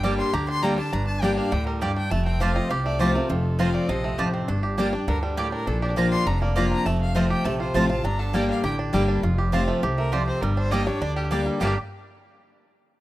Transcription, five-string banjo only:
0.00 0.31 D3 medium
0.00 0.45 G3 medium
0.00 0.16 D4 medium
0.00 0.33 G4 medium
0.19 0.47 D4 medium
0.33 0.75 G4 medium
0.48 0.77 D4 medium
0.63 1.05 G3 medium
0.78 0.91 D4 medium
0.93 1.21 D4 medium
1.23 1.36 D4 medium
1.37 1.79 D4 medium
1.52 1.94 D3 medium
1.67 2.08 G3 medium
1.82 2.11 G4 medium
1.97 2.11 D4 medium
2.11 2.53 A3 medium
2.26 2.68 C4 medium
2.41 2.69 G4 medium
2.56 2.97 F4 medium
2.71 2.99 G4 medium
2.86 3.14 A3 medium
3.01 3.42 G4 medium
3.16 3.57 A3 medium
3.30 3.59 F4 medium
3.60 4.01 F4 medium
3.74 4.16 C4 medium
3.89 4.31 F3 medium
4.04 4.46 A3 medium
4.19 4.48 G4 medium
4.34 4.48 C4 medium
4.48 4.77 D4 medium
4.63 5.05 G4 medium
4.78 4.92 D4 medium
4.93 5.34 D4 medium
5.08 5.49 D3 medium
5.23 5.64 G3 medium
5.38 5.67 G4 medium
5.52 5.66 D4 medium
5.67 5.96 D4 medium
5.82 6.24 G4 medium
5.97 6.11 D4 medium
6.12 6.53 D4 medium
6.27 6.68 D3 medium
6.42 6.83 A#3 medium
6.57 6.86 G4 medium
6.72 6.86 D4 medium
6.86 7.14 A3 medium
7.16 7.44 A3 medium
7.30 7.72 G4 medium
7.45 7.87 A3 medium
7.60 7.89 F4 medium
7.75 8.05 F3 medium
7.90 8.04 F4 medium
8.05 8.46 D4 medium
8.19 8.61 D3 medium
8.34 8.76 G3 medium
8.49 8.78 D4 medium
8.64 9.05 G4 medium
8.79 9.07 D4 medium
8.94 9.23 G3 medium
9.08 9.23 D4 medium
9.23 9.52 F4 medium
9.38 9.80 G4 medium
9.53 9.95 F4 medium
9.68 9.97 A3 medium
9.83 10.12 G4 medium
9.98 10.39 A3 medium
10.13 10.42 G4 medium
10.28 10.42 C4 medium
10.42 10.71 G3 medium
10.57 10.86 D4 medium
10.72 11.14 G3 medium
10.87 11.00 D4 medium
11.02 11.30 D4 medium
11.16 11.45 G3 medium
11.31 11.61 D4 medium
11.46 11.60 G3 medium
11.61 11.75 G3 medium
11.61 11.76 A#3 medium
11.61 11.77 D4 medium
11.67 11.78 G4 medium

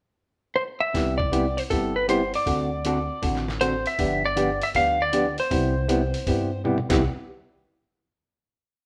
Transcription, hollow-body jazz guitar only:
0.93 1.16 C3 medium
0.93 1.17 G3 medium
0.93 1.17 B3 medium
0.93 1.17 E4 medium
0.93 1.17 G4 medium
1.32 1.44 C3 medium
1.32 1.44 G3 medium
1.32 1.44 B3 medium
1.32 1.45 E4 medium
1.32 1.45 G4 medium
1.70 1.93 C3 medium
1.70 1.93 G3 soft
1.70 1.93 B3 medium
1.70 1.94 E4 medium
1.70 1.94 G4 medium
2.08 2.20 C3 medium
2.08 2.20 G3 medium
2.08 2.21 B3 medium
2.08 2.21 E4 medium
2.08 2.21 G4 medium
2.46 2.69 D3 medium
2.46 2.69 A3 medium
2.46 2.69 C4 medium
2.46 2.69 F#4 medium
2.46 2.70 A4 medium
2.85 2.97 D3 medium
2.85 2.97 A3 medium
2.85 2.98 C4 medium
2.85 2.98 F#4 medium
2.85 2.98 A4 medium
3.22 3.45 D3 medium
3.22 3.45 A3 medium
3.22 3.45 C4 soft
3.22 3.46 F#4 medium
3.22 3.46 A4 medium
3.60 3.73 D3 medium
3.60 3.73 A3 medium
3.60 3.73 C4 medium
3.60 3.73 F#4 medium
3.60 3.73 A4 medium
3.98 4.21 D3 medium
3.98 4.21 F3 medium
3.98 4.22 B3 medium
3.98 4.22 D4 medium
3.98 4.22 G4 medium
4.36 4.48 D3 medium
4.36 4.49 F3 medium
4.36 4.49 B3 medium
4.36 4.49 D4 medium
4.36 4.49 G4 medium
4.75 4.97 D3 soft
4.75 4.97 F3 medium
4.75 4.98 B3 medium
4.75 4.98 D4 medium
4.75 4.98 G4 medium
5.13 5.25 D3 medium
5.13 5.25 F3 medium
5.13 5.25 B3 medium
5.13 5.25 D4 medium
5.13 5.25 G4 medium
5.50 5.73 C3 medium
5.50 5.73 G3 medium
5.50 5.73 B3 medium
5.50 5.74 E4 medium
5.50 5.74 G4 medium
5.88 6.00 C3 medium
5.88 6.01 G3 medium
5.88 6.01 B3 medium
5.88 6.01 E4 medium
5.88 6.01 G4 medium
6.27 6.49 C3 soft
6.27 6.50 G3 medium
6.27 6.50 B3 medium
6.27 6.50 E4 medium
6.27 6.50 G4 medium
6.64 6.76 C3 medium
6.64 6.77 G3 medium
6.64 6.77 B3 medium
6.64 6.77 E4 medium
6.64 6.77 G4 medium
6.89 7.00 C3 medium
6.89 7.00 G3 medium
6.89 7.00 B3 medium
6.89 7.01 E4 medium
6.89 7.01 G4 medium

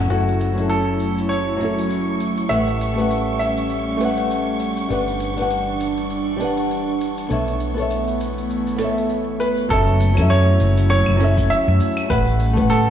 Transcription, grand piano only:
0.10 0.72 F#4 medium
0.70 1.32 A4 medium
1.29 2.46 C#5 medium
2.49 3.38 E5 loud
3.39 4.56 E5 medium
9.40 9.71 B4 medium
9.70 10.26 A4 medium
10.30 10.88 C#5 loud
10.90 11.52 C#5 loud
11.50 12.12 E5 loud
12.10 12.72 B4 loud
12.70 12.90 A4 loud

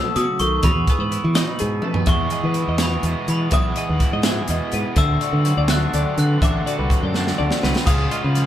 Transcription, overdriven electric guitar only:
2.07 2.82 E3 medium
2.07 2.81 G#3 medium
2.07 2.80 B3 medium
2.07 2.80 E4 medium
2.07 2.79 G#4 medium
2.79 3.49 E3 medium
2.79 3.50 G#3 medium
2.79 3.52 B3 medium
2.79 3.51 E4 medium
2.79 3.51 G#4 medium
3.51 4.23 E3 medium
3.51 4.23 G#3 medium
3.51 4.24 B3 medium
3.51 4.24 E4 medium
3.55 4.23 G#4 loud
4.25 4.95 E3 medium
4.25 4.96 G#3 medium
4.25 4.97 B3 medium
4.25 4.97 E4 medium
4.25 4.96 G#4 medium
4.95 5.72 D3 medium
4.95 5.71 A3 medium
4.95 5.71 C4 medium
4.95 5.70 F#4 medium
4.95 5.69 A4 loud
5.69 6.39 D3 medium
5.69 6.40 A3 medium
5.69 6.41 C4 medium
5.69 6.41 F#4 medium
5.69 6.41 A4 medium
6.40 7.12 D3 medium
6.40 7.13 A3 medium
6.40 7.13 C4 medium
6.40 7.13 F#4 medium
6.40 7.12 A4 medium
7.13 7.86 A3 medium
7.13 7.86 C4 medium
7.13 7.86 F#4 medium
7.13 7.85 A4 medium
7.17 7.86 D3 medium
7.86 8.46 C#3 medium
7.86 8.46 G#3 medium
7.86 8.46 B3 medium
7.86 8.46 F4 medium
7.86 8.46 G#4 loud

